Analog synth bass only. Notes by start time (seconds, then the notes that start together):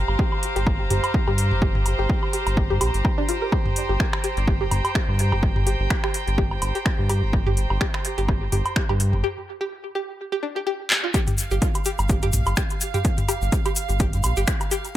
0.08 G1
0.56 G1
0.90 G1
1.28 G2
1.51 G1
1.99 G1
2.47 G1
2.70 G2
2.81 A#1
2.94 G1
3.89 G1
4.37 G1
4.71 G1
5.08 G2
5.32 G1
5.80 G1
6.27 G1
6.62 G1
6.99 G2
7.23 G1
7.70 G1
8.18 G1
8.52 G1
8.89 G2
9.13 G1
11.51 G1
11.99 G1
12.23 G2
12.33 A#1
12.47 G1
13.42 G1
13.89 G1
14.13 G2
14.24 A#1
14.37 G1